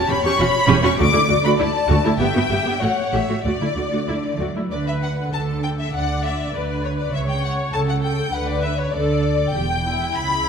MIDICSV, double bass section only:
0, 0, Header, 1, 2, 480
1, 0, Start_track
1, 0, Key_signature, 2, "major"
1, 0, Tempo, 601805
1, 786, Time_signature, 2, 2, 24, 8
1, 1749, Tempo, 626305
1, 4149, Tempo, 603015
1, 8259, End_track
2, 0, Start_track
2, 0, Title_t, "Double bass section"
2, 0, Program_c, 0, 48
2, 70, Note_on_c, 0, 28, 62
2, 118, Note_off_c, 0, 28, 0
2, 308, Note_on_c, 0, 28, 64
2, 356, Note_off_c, 0, 28, 0
2, 543, Note_on_c, 0, 28, 92
2, 592, Note_off_c, 0, 28, 0
2, 786, Note_on_c, 0, 38, 94
2, 834, Note_off_c, 0, 38, 0
2, 1021, Note_on_c, 0, 38, 66
2, 1069, Note_off_c, 0, 38, 0
2, 1263, Note_on_c, 0, 38, 62
2, 1311, Note_off_c, 0, 38, 0
2, 1503, Note_on_c, 0, 38, 90
2, 1552, Note_off_c, 0, 38, 0
2, 1745, Note_on_c, 0, 31, 86
2, 1793, Note_off_c, 0, 31, 0
2, 1983, Note_on_c, 0, 31, 54
2, 2031, Note_off_c, 0, 31, 0
2, 2225, Note_on_c, 0, 33, 55
2, 2272, Note_off_c, 0, 33, 0
2, 2463, Note_on_c, 0, 33, 73
2, 2512, Note_off_c, 0, 33, 0
2, 2709, Note_on_c, 0, 38, 66
2, 2757, Note_off_c, 0, 38, 0
2, 2950, Note_on_c, 0, 38, 43
2, 2998, Note_off_c, 0, 38, 0
2, 3191, Note_on_c, 0, 38, 42
2, 3239, Note_off_c, 0, 38, 0
2, 3433, Note_on_c, 0, 38, 60
2, 3482, Note_off_c, 0, 38, 0
2, 3675, Note_on_c, 0, 38, 52
2, 4092, Note_off_c, 0, 38, 0
2, 4149, Note_on_c, 0, 38, 51
2, 4573, Note_off_c, 0, 38, 0
2, 4633, Note_on_c, 0, 38, 54
2, 5054, Note_off_c, 0, 38, 0
2, 5113, Note_on_c, 0, 38, 47
2, 5532, Note_off_c, 0, 38, 0
2, 5585, Note_on_c, 0, 37, 55
2, 6006, Note_off_c, 0, 37, 0
2, 6061, Note_on_c, 0, 37, 53
2, 6481, Note_off_c, 0, 37, 0
2, 6540, Note_on_c, 0, 38, 54
2, 6956, Note_off_c, 0, 38, 0
2, 7010, Note_on_c, 0, 38, 54
2, 7446, Note_off_c, 0, 38, 0
2, 7503, Note_on_c, 0, 28, 54
2, 7954, Note_off_c, 0, 28, 0
2, 7989, Note_on_c, 0, 37, 49
2, 8259, Note_off_c, 0, 37, 0
2, 8259, End_track
0, 0, End_of_file